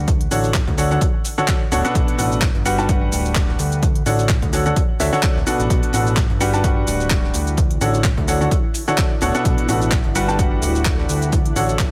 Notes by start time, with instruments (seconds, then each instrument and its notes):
Already playing: analog synth bass D2
0.08 kick, closed hi-hat, shaker
0.21 closed hi-hat
0.31 analog synth bass A1, grand piano D3 D4 F#4 A4 C#5 F#5, closed hi-hat, open hi-hat, shaker
0.44 closed hi-hat, shaker
0.54 kick, snare, clap, closed hi-hat, shaker
0.67 analog synth bass D2, kick, closed hi-hat
0.78 grand piano D3 D4 F#4 A4 C#5 F#5, snare, closed hi-hat, open hi-hat, shaker
0.91 grand piano D3 D4 F#4 A4 C#5 F#5, shaker
1.01 kick, closed hi-hat, shaker
1.25 closed hi-hat, open hi-hat, shaker
1.38 grand piano D3 D4 F#4 A4 C#5 F#5, shaker
1.48 kick, snare, clap, closed hi-hat, shaker
1.72 analog synth bass D1, grand piano B2 D4 F#4 A4 C#5 F#5, closed hi-hat, open hi-hat, shaker
1.85 grand piano B2 D4 F#4 A4 B4 F#5, closed hi-hat, shaker
1.95 analog synth bass B1, kick, closed hi-hat, shaker
2.08 closed hi-hat
2.18 analog synth bass A1, grand piano B2 D4 F#4 A4 B4 F#5, closed hi-hat, open hi-hat, shaker
2.32 shaker
2.42 kick, snare, clap, closed hi-hat, shaker
2.55 analog synth bass G1, closed hi-hat
2.65 grand piano G3 D4 F#4 G4 B4 F#5, closed hi-hat, open hi-hat, shaker
2.78 grand piano G3 D4 F#4 G4 B4 A5, snare, shaker
2.89 grand piano G3 D4 F#4 G4 B4 F#5, kick, closed hi-hat, shaker
3.12 analog synth bass D1, closed hi-hat, open hi-hat, shaker
3.25 shaker
3.35 kick, snare, clap, closed hi-hat, shaker
3.49 snare
3.59 analog synth bass D2, closed hi-hat, open hi-hat, shaker
3.72 closed hi-hat, shaker
3.83 kick, closed hi-hat, shaker
3.95 closed hi-hat
4.06 analog synth bass A1, grand piano D3 D4 F#4 A4 C#5 F#5, closed hi-hat, open hi-hat, shaker
4.19 closed hi-hat, shaker
4.29 kick, snare, clap, closed hi-hat, shaker
4.42 analog synth bass D2, kick, closed hi-hat
4.53 grand piano D3 D4 F#4 A4 C#5 F#5, snare, closed hi-hat, open hi-hat, shaker
4.66 grand piano D3 D4 F#4 A4 C#5 F#5, closed hi-hat, shaker
4.76 kick, closed hi-hat, shaker
5.00 analog synth bass D2, grand piano D3 D4 F#4 A4 C#5 E5, snare, closed hi-hat, open hi-hat, shaker
5.13 grand piano D3 D4 F#4 A4 C#5 F#5, closed hi-hat, shaker
5.23 kick, clap, closed hi-hat, shaker
5.36 analog synth bass D1, snare
5.47 grand piano B2 D4 F#4 A4 B4 F#5, closed hi-hat, open hi-hat, shaker
5.60 analog synth bass A1, closed hi-hat, shaker
5.70 analog synth bass B1, kick, closed hi-hat, shaker
5.83 closed hi-hat
5.93 analog synth bass A1, grand piano B2 D4 F#4 A4 B4 F#5, closed hi-hat, open hi-hat, shaker
6.07 shaker
6.17 kick, snare, clap, closed hi-hat, shaker
6.30 analog synth bass G1, closed hi-hat
6.40 grand piano G3 D4 F#4 G4 B4 F#5, ambient pad E4, closed hi-hat, open hi-hat, shaker
6.53 grand piano G3 D4 F#4 G4 B4 A5, snare, shaker
6.64 grand piano G3 D4 F#4 G4 B4 F#5, kick, closed hi-hat, shaker
6.87 analog synth bass D1, closed hi-hat, open hi-hat, shaker
7.00 shaker
7.10 kick, snare, clap, closed hi-hat, shaker
7.24 snare
7.34 analog synth bass D2, closed hi-hat, open hi-hat, shaker
7.47 closed hi-hat, shaker
7.57 kick, closed hi-hat, shaker
7.71 closed hi-hat
7.81 analog synth bass A1, grand piano D3 D4 F#4 A4 C#5 F#5, closed hi-hat, open hi-hat, shaker
7.94 closed hi-hat, shaker
8.04 ambient pad D5, kick, snare, clap, closed hi-hat, shaker
8.17 analog synth bass D2, kick, closed hi-hat
8.27 grand piano D3 D4 F#4 A4 C#5 F#5, ambient pad A4 F#5, snare, closed hi-hat, open hi-hat, shaker
8.41 grand piano D3 D4 F#4 A4 C#5 F#5, shaker
8.51 kick, closed hi-hat, shaker
8.74 closed hi-hat, open hi-hat, shaker
8.88 grand piano D3 D4 F#4 A4 C#5 F#5, shaker
8.98 kick, snare, clap, closed hi-hat, shaker
9.21 analog synth bass D1, grand piano B2 D4 F#4 A4 C#5 F#5, closed hi-hat, open hi-hat, shaker
9.35 grand piano B2 D4 F#4 A4 B4 F#5, closed hi-hat, shaker
9.45 analog synth bass B1, kick, closed hi-hat, shaker
9.58 closed hi-hat
9.68 analog synth bass A1, grand piano B2 D4 F#4 A4 B4 F#5, closed hi-hat, open hi-hat, shaker
9.82 shaker
9.91 kick, snare, clap, closed hi-hat, shaker
10.04 analog synth bass G1, closed hi-hat
10.15 grand piano G3 D4 F#4 G4 B4 F#5, closed hi-hat, open hi-hat, shaker
10.28 grand piano G3 D4 F#4 G4 B4 A5, snare, shaker
10.39 grand piano G3 D4 F#4 G4 B4 F#5, kick, closed hi-hat, shaker
10.62 analog synth bass D1, closed hi-hat, open hi-hat, shaker
10.75 shaker
10.85 kick, snare, clap, closed hi-hat, shaker
10.98 snare
11.09 analog synth bass D2, closed hi-hat, open hi-hat, shaker
11.22 closed hi-hat, shaker
11.32 kick, closed hi-hat, shaker
11.46 closed hi-hat
11.56 analog synth bass A1, grand piano D3 D4 F#4 A4 C#5 F#5, closed hi-hat, open hi-hat, shaker
11.69 closed hi-hat, shaker
11.79 kick, snare, clap, closed hi-hat, shaker